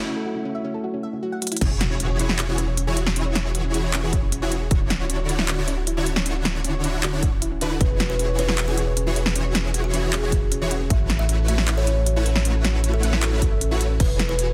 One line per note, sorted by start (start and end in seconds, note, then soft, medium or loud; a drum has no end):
0.00 1.64 A3 medium
0.00 1.63 E4 medium
0.00 1.64 F#4 medium
0.00 1.64 C#5 loud
0.00 1.63 E5 medium
0.06 0.11 C#4 loud
0.16 0.22 A4 medium
0.26 0.30 F#4 medium
0.35 0.40 C#4 medium
0.45 0.49 C#4 loud
0.55 0.61 E5 loud
0.64 0.69 C#4 loud
0.74 0.80 A4 medium
0.84 0.88 F#4 medium
0.94 0.98 C#4 medium
1.03 1.09 E5 loud
1.13 1.19 C#4 medium
1.23 1.27 F#4 loud
1.32 1.37 F#5 loud
1.42 1.48 F#4 medium
1.42 closed hi-hat medium
1.47 closed hi-hat medium
1.52 1.56 E4 loud
1.52 closed hi-hat medium
1.57 closed hi-hat medium
1.61 4.69 E1 medium
1.61 2.17 E3 medium
1.61 1.66 C#4 loud
1.61 2.17 E4 medium
1.61 2.17 F#4 medium
1.61 2.17 G#4 medium
1.61 2.17 C#5 medium
1.61 kick loud
1.61 closed hi-hat medium
1.61 crash loud
1.61 impact medium
1.71 1.77 G#4 medium
1.81 1.85 F#4 medium
1.81 snare medium
1.81 closed hi-hat medium
1.90 1.95 C#4 medium
2.00 2.04 C#4 loud
2.00 closed hi-hat medium
2.10 2.16 C#5 loud
2.19 2.46 E3 medium
2.19 2.24 C#4 loud
2.19 2.46 E4 medium
2.19 2.46 F#4 medium
2.19 2.46 G#4 medium
2.19 2.46 C#5 medium
2.19 closed hi-hat medium
2.29 2.35 G#4 medium
2.29 snare medium
2.39 2.43 F#4 medium
2.39 clap loud
2.39 closed hi-hat medium
2.48 2.58 E3 medium
2.48 2.53 C#4 medium
2.48 2.58 E4 medium
2.48 2.58 F#4 medium
2.48 2.58 G#4 medium
2.48 2.58 C#5 medium
2.58 2.62 C#4 loud
2.58 closed hi-hat medium
2.68 2.74 C#5 loud
2.77 2.82 C#4 loud
2.77 closed hi-hat medium
2.87 2.96 E3 loud
2.87 2.96 E4 medium
2.87 2.96 F#4 medium
2.87 2.93 G#4 medium
2.87 2.96 G#4 medium
2.87 2.96 C#5 loud
2.97 3.01 F#4 medium
2.97 closed hi-hat medium
3.06 3.11 C#4 medium
3.06 snare medium
3.16 3.72 E3 medium
3.16 3.20 C#4 loud
3.16 3.72 E4 medium
3.16 3.72 F#4 medium
3.16 3.72 G#4 medium
3.16 3.72 C#5 medium
3.16 closed hi-hat medium
3.26 3.32 C#5 loud
3.35 3.40 C#4 loud
3.35 snare medium
3.35 closed hi-hat medium
3.45 3.51 G#4 medium
3.55 3.59 F#4 medium
3.55 closed hi-hat medium
3.65 3.69 C#4 medium
3.74 4.01 E3 medium
3.74 3.78 C#4 loud
3.74 4.01 E4 medium
3.74 4.01 F#4 medium
3.74 4.01 G#4 medium
3.74 4.01 C#5 medium
3.74 closed hi-hat medium
3.84 3.90 C#5 loud
3.94 3.98 C#4 loud
3.94 clap loud
3.94 closed hi-hat medium
4.03 4.12 E3 medium
4.03 4.12 E4 medium
4.03 4.12 F#4 medium
4.03 4.09 G#4 medium
4.03 4.12 G#4 medium
4.03 4.12 C#5 medium
4.13 4.17 F#4 medium
4.13 kick medium
4.13 closed hi-hat medium
4.23 4.27 C#4 medium
4.32 4.36 C#4 loud
4.32 closed hi-hat medium
4.42 4.51 E3 loud
4.42 4.51 E4 medium
4.42 4.51 F#4 medium
4.42 4.51 G#4 medium
4.42 4.48 C#5 loud
4.42 4.51 C#5 loud
4.52 4.56 C#4 loud
4.52 closed hi-hat medium
4.61 4.68 G#4 medium
4.71 7.79 D1 loud
4.71 5.27 D3 medium
4.71 5.27 D4 medium
4.71 5.27 E4 medium
4.71 4.75 E4 medium
4.71 5.27 F#4 medium
4.71 5.27 C#5 medium
4.71 kick loud
4.71 closed hi-hat medium
4.81 4.85 C#4 medium
4.90 4.95 C#4 loud
4.90 snare medium
4.90 closed hi-hat medium
5.00 5.06 C#5 loud
5.10 5.14 C#4 loud
5.10 closed hi-hat medium
5.19 5.26 F#4 medium
5.29 5.56 D3 medium
5.29 5.56 D4 medium
5.29 5.33 E4 medium
5.29 5.56 E4 medium
5.29 5.56 F#4 medium
5.29 5.56 C#5 medium
5.29 closed hi-hat medium
5.39 5.43 C#4 medium
5.39 snare medium
5.48 5.53 C#4 loud
5.48 clap loud
5.48 closed hi-hat medium
5.58 5.67 D3 medium
5.58 5.67 D4 medium
5.58 5.67 E4 medium
5.58 5.67 F#4 medium
5.58 5.64 C#5 loud
5.58 5.67 C#5 medium
5.68 5.72 C#4 loud
5.68 closed hi-hat medium
5.77 5.84 F#4 medium
5.87 5.91 E4 medium
5.87 closed hi-hat medium
5.97 6.06 D3 loud
5.97 6.01 C#4 medium
5.97 6.06 D4 medium
5.97 6.06 E4 medium
5.97 6.06 F#4 loud
5.97 6.06 C#5 loud
6.06 6.11 C#4 loud
6.06 closed hi-hat medium
6.16 6.22 C#5 loud
6.16 snare medium
6.26 6.82 D3 medium
6.26 6.30 C#4 loud
6.26 6.82 D4 medium
6.26 6.82 E4 medium
6.26 6.82 F#4 medium
6.26 6.82 C#5 medium
6.26 closed hi-hat medium
6.35 6.42 F#4 medium
6.45 6.49 E4 medium
6.45 snare medium
6.45 closed hi-hat medium
6.55 6.59 C#4 medium
6.64 6.69 C#4 loud
6.64 closed hi-hat medium
6.74 6.80 C#5 loud
6.84 7.11 D3 medium
6.84 6.88 C#4 loud
6.84 7.11 D4 medium
6.84 7.11 E4 medium
6.84 7.11 F#4 medium
6.84 7.11 C#5 medium
6.84 closed hi-hat medium
6.94 7.00 F#4 medium
7.03 7.07 E4 medium
7.03 clap loud
7.03 closed hi-hat medium
7.13 7.22 D3 medium
7.13 7.17 C#4 medium
7.13 7.22 D4 medium
7.13 7.22 E4 medium
7.13 7.22 F#4 medium
7.13 7.22 C#5 medium
7.23 7.25 C#4 loud
7.23 kick medium
7.23 closed hi-hat medium
7.32 7.36 C#4 medium
7.42 7.48 E4 loud
7.42 closed hi-hat medium
7.52 7.56 C#4 medium
7.61 7.71 D3 loud
7.61 7.65 D4 medium
7.61 7.71 D4 medium
7.61 7.71 E4 medium
7.61 7.71 F#4 medium
7.61 7.71 B4 loud
7.61 closed hi-hat medium
7.71 7.75 E4 medium
7.80 10.88 E1 medium
7.80 8.36 E3 medium
7.80 7.85 C#4 loud
7.80 8.36 E4 medium
7.80 8.36 F#4 medium
7.80 8.37 G#4 medium
7.80 8.06 B4 loud
7.80 8.36 C#5 medium
7.80 kick loud
7.80 closed hi-hat medium
7.90 7.97 G#4 medium
8.00 8.04 F#4 medium
8.00 snare medium
8.00 closed hi-hat medium
8.10 8.14 C#4 medium
8.10 8.35 B4 medium
8.19 8.23 C#4 loud
8.19 closed hi-hat medium
8.29 8.35 C#5 loud
8.39 8.66 E3 medium
8.39 8.43 C#4 loud
8.39 8.66 E4 medium
8.39 8.66 F#4 medium
8.39 8.66 G#4 medium
8.39 8.64 B4 loud
8.39 8.66 C#5 medium
8.39 closed hi-hat medium
8.48 8.55 G#4 medium
8.48 snare medium
8.58 8.62 F#4 medium
8.58 clap loud
8.58 closed hi-hat medium
8.68 8.77 E3 medium
8.68 8.72 C#4 medium
8.68 8.77 E4 medium
8.68 8.77 F#4 medium
8.68 8.77 G#4 medium
8.68 8.93 G#4 loud
8.68 8.77 C#5 medium
8.77 8.82 C#4 loud
8.77 closed hi-hat medium
8.87 8.93 C#5 loud
8.97 9.01 C#4 loud
8.97 closed hi-hat medium
9.06 9.16 E3 loud
9.06 9.16 E4 loud
9.06 9.16 F#4 loud
9.06 9.13 G#4 medium
9.06 9.16 G#4 medium
9.06 9.16 C#5 loud
9.16 9.20 F#4 medium
9.16 closed hi-hat medium
9.26 9.30 C#4 medium
9.26 snare medium
9.35 9.91 E3 medium
9.35 9.40 C#4 loud
9.35 9.91 E4 medium
9.35 9.91 F#4 medium
9.35 9.91 G#4 medium
9.35 9.91 C#5 medium
9.35 closed hi-hat medium
9.45 9.51 C#5 medium
9.55 9.59 C#4 loud
9.55 snare medium
9.55 closed hi-hat medium
9.65 9.71 G#4 medium
9.74 9.78 F#4 medium
9.74 closed hi-hat medium
9.84 9.88 C#4 medium
9.84 10.09 F#4 loud
9.93 10.20 E3 medium
9.93 9.98 C#4 loud
9.93 10.20 E4 medium
9.93 10.20 F#4 medium
9.93 10.20 G#4 medium
9.93 10.20 C#5 medium
9.93 closed hi-hat medium
10.03 10.09 C#5 loud
10.13 10.17 C#4 loud
10.13 10.30 G#4 medium
10.13 clap loud
10.13 closed hi-hat medium
10.23 10.32 E3 medium
10.23 10.32 E4 medium
10.23 10.32 F#4 medium
10.23 10.29 G#4 medium
10.23 10.32 G#4 medium
10.23 10.32 C#5 medium
10.32 10.36 F#4 medium
10.32 10.83 G#4 medium
10.32 kick medium
10.32 closed hi-hat medium
10.42 10.46 C#4 medium
10.52 10.56 C#4 medium
10.52 closed hi-hat medium
10.61 10.71 E3 loud
10.61 10.71 E4 medium
10.61 10.71 F#4 medium
10.61 10.71 G#4 medium
10.61 10.68 C#5 loud
10.61 10.71 C#5 loud
10.71 10.75 C#4 loud
10.71 closed hi-hat medium
10.81 10.87 G#4 medium
10.90 13.98 A1 medium
10.90 11.46 A3 medium
10.90 11.46 E4 medium
10.90 11.46 F#4 medium
10.90 10.95 F#4 medium
10.90 11.46 B4 medium
10.90 11.46 C#5 medium
10.90 11.16 E5 medium
10.90 kick loud
10.90 closed hi-hat medium
11.00 11.04 C#4 medium
11.10 11.14 C#4 loud
11.10 snare medium
11.10 closed hi-hat medium
11.19 11.26 E5 loud
11.19 11.45 E5 loud
11.29 11.33 C#4 loud
11.29 closed hi-hat medium
11.39 11.45 A4 medium
11.48 11.75 A3 medium
11.48 11.75 E4 medium
11.48 11.53 F#4 medium
11.48 11.75 F#4 medium
11.48 11.75 B4 medium
11.48 11.75 C#5 medium
11.48 11.74 E5 medium
11.48 closed hi-hat medium
11.58 11.62 C#4 medium
11.58 snare medium
11.68 11.72 C#4 loud
11.68 clap loud
11.68 closed hi-hat medium
11.77 11.87 A3 medium
11.77 11.87 E4 medium
11.77 11.87 F#4 medium
11.77 11.87 B4 medium
11.77 11.87 C#5 medium
11.77 12.03 C#5 medium
11.77 11.84 E5 loud
11.87 11.91 C#4 loud
11.87 closed hi-hat medium
11.97 12.03 A4 medium
12.06 12.11 F#4 medium
12.06 closed hi-hat medium
12.16 12.25 A3 loud
12.16 12.20 C#4 medium
12.16 12.25 E4 medium
12.16 12.25 F#4 loud
12.16 12.25 B4 medium
12.16 12.25 C#5 loud
12.26 12.30 C#4 loud
12.26 closed hi-hat medium
12.36 12.42 E5 loud
12.36 snare medium
12.45 13.01 A3 medium
12.45 12.49 C#4 loud
12.45 13.01 E4 medium
12.45 13.01 F#4 medium
12.45 13.01 B4 medium
12.45 13.01 C#5 medium
12.45 closed hi-hat medium
12.55 12.61 A4 medium
12.65 12.69 F#4 medium
12.65 snare medium
12.65 closed hi-hat medium
12.74 12.78 C#4 medium
12.84 12.88 C#4 loud
12.84 closed hi-hat medium
12.94 13.19 A4 medium
12.94 13.00 E5 loud
13.03 13.30 A3 medium
13.03 13.07 C#4 loud
13.03 13.30 E4 medium
13.03 13.30 F#4 medium
13.03 13.30 B4 medium
13.03 13.30 C#5 medium
13.03 closed hi-hat medium
13.13 13.19 A4 medium
13.13 snare medium
13.23 13.27 F#4 medium
13.23 13.40 A4 medium
13.23 clap loud
13.23 closed hi-hat medium
13.32 13.42 A3 medium
13.32 13.36 C#4 medium
13.32 13.42 E4 medium
13.32 13.42 F#4 medium
13.32 13.42 B4 medium
13.32 13.42 C#5 medium
13.42 13.46 C#4 loud
13.42 13.92 A4 medium
13.42 kick medium
13.42 closed hi-hat medium
13.52 13.58 E5 loud
13.61 13.65 C#4 loud
13.61 closed hi-hat medium
13.71 13.80 A3 loud
13.71 13.80 E4 medium
13.71 13.80 F#4 medium
13.71 13.77 A4 medium
13.71 13.80 B4 medium
13.71 13.80 C#5 loud
13.81 13.85 F#4 medium
13.81 closed hi-hat medium
13.90 13.95 C#4 medium
14.00 14.54 E1 medium
14.00 14.54 E3 medium
14.00 14.54 E4 medium
14.00 14.54 F#4 medium
14.00 14.54 G#4 medium
14.00 14.26 B4 medium
14.00 14.54 C#5 medium
14.00 kick loud
14.00 closed hi-hat medium
14.00 crash loud
14.19 snare medium
14.19 closed hi-hat medium
14.29 14.54 B4 medium
14.39 closed hi-hat medium